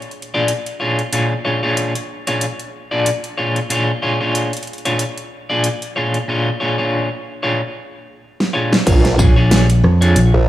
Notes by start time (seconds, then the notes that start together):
0.02 closed hi-hat
0.11 closed hi-hat
0.22 closed hi-hat
0.34 A#2 D4 F4 G#4 D5
0.48 closed hi-hat
0.66 closed hi-hat
0.80 A#2 D4 F4 G#4 C#5
0.99 closed hi-hat
1.13 A#2 D4 F4 G#4 C#5, closed hi-hat
1.45 A#2 D4 F4 G#4 C#5
1.63 A#2 D4 F4 G#4 C#5
1.77 closed hi-hat
1.95 closed hi-hat
2.27 A#2 D4 F4 G#4 C#5, closed hi-hat
2.41 closed hi-hat
2.60 closed hi-hat
2.91 A#2 D4 F4 G#4 D5
3.06 closed hi-hat
3.24 closed hi-hat
3.38 A#2 D4 F4 G#4 C#5
3.56 closed hi-hat
3.70 A#2 D4 F4 G#4 C#5, closed hi-hat
4.02 A#2 D4 F4 G#4 C#5
4.20 A#2 D4 F4 G#4 C#5
4.35 closed hi-hat
4.53 closed hi-hat
4.57 closed hi-hat
4.63 closed hi-hat
4.67 closed hi-hat
4.73 closed hi-hat
4.78 closed hi-hat
4.85 A#2 D4 F4 G#4 C#5, closed hi-hat
4.99 closed hi-hat
5.18 closed hi-hat
5.50 A#2 D4 F4 G#4 D5
5.64 closed hi-hat
5.82 closed hi-hat
5.96 A#2 D4 F4 G#4 C#5
6.14 closed hi-hat
6.28 A#2 D4 F4 G#4 C#5
6.60 A#2 D4 F4 G#4 C#5
6.78 A#2 D4 F4 G#4 C#5
7.43 A#2 D4 F4 G#4 C#5
8.40 snare
8.53 A#2 D4 F4 G#4 C#5
8.73 snare
8.86 A#1 D4 F4 G#4 C#5, kick, closed hi-hat, crash
9.05 snare, closed hi-hat
9.19 A#1 D4 F4 G#4 C#5, kick, tambourine
9.36 D4 F4 G#4 C#5
9.51 snare, closed hi-hat
9.70 closed hi-hat
9.84 F2, cross-stick
10.01 D4 F4 G#4 C#5, closed hi-hat
10.16 A#1, closed hi-hat
10.34 A#1